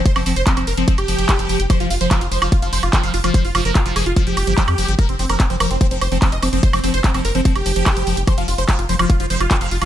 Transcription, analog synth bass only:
X:1
M:4/4
L:1/16
Q:1/4=146
K:Cphr
V:1 name="Analog synth bass" clef=bass
z F,,, F,,, F,,, z F,,, F,,, F,,, z F,,, F,,, F,,, z F,,, F,,, F,,, | z F,,, F,,, F,,, z F,,, F,,, F,,, z F,,, F,,, F,,, z F,,, F,,, F,,, | z F,,, F,,, F,,, z F,,, F,,, F,,, z F,,, F,,, G,,, z F,, F,,, G,,, | z F,,, F,,, F,,, z F,,, F,,, F,,, z F,,, F,,, F,,, z F,,, F,,, F,,, |
z F,,, F,,, F,,, z F,,, F,,, F,,, z F,,, F,,, F,,, z F,,, F,,, F,,, | z F,,, F,,, F,,, z F,,, F,,, F,,, z F,,, F,,, F,,, z F,,, F,,, F,,, |]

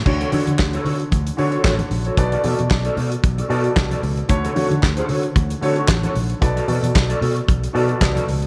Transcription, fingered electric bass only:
X:1
M:4/4
L:1/16
Q:"Swing 16ths" 1/4=113
K:D
V:1 name="Fingered electric bass" clef=bass
D,,2 D, D, D,,2 D,2 D,,2 D,2 A,,,2 _B,,,2 | B,,,2 B,, B,, B,,,2 B,,2 B,,,2 B,,2 =C,,2 ^C,,2 | D,,2 D, D, D,,2 D,2 D,,2 D,2 A,,,2 _B,,,2 | B,,,2 B,, B,, B,,,2 B,,2 B,,,2 B,,2 =C,,2 ^C,,2 |]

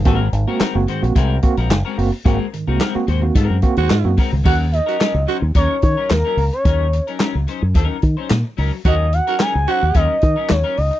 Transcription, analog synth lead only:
X:1
M:4/4
L:1/16
Q:1/4=109
K:Ebdor
V:1 name="Analog synth lead"
z16 | z16 | g2 e4 z2 d2 d2 B2 B d- | d3 z12 z |
e2 g2 a2 g2 e4 d2 e2 |]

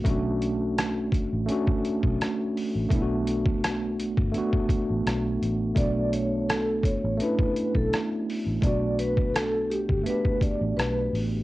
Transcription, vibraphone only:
X:1
M:4/4
L:1/16
Q:"Swing 16ths" 1/4=84
K:Bm
V:1 name="Vibraphone"
z16 | z16 | d2 c2 A2 c2 B3 A z4 | d2 B2 A2 G2 B2 z2 B2 z2 |]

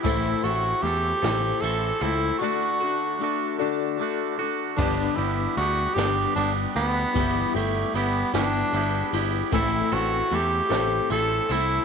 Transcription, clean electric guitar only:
X:1
M:6/8
L:1/8
Q:3/8=51
K:G
V:1 name="Clean electric guitar"
[A,,E,CEA] [CEA] [E,CEA] [CEA] [E,CEA] [CEA] | [D,A,DF] [A,DF] [D,A,DF] [A,DF] [D,A,DF] [A,DF] | [G,,D,G,B,DG] [G,B,DG] [G,B,DG] [G,B,DG] [G,B,DG] [G,B,DG] | [G,B,EG] [B,EG] [G,B,EG] [B,EG] [G,B,EG] [B,EG] |
[A,,E,CEA] [CEA] [E,CEA] [CEA] [E,CEA] [CEA] |]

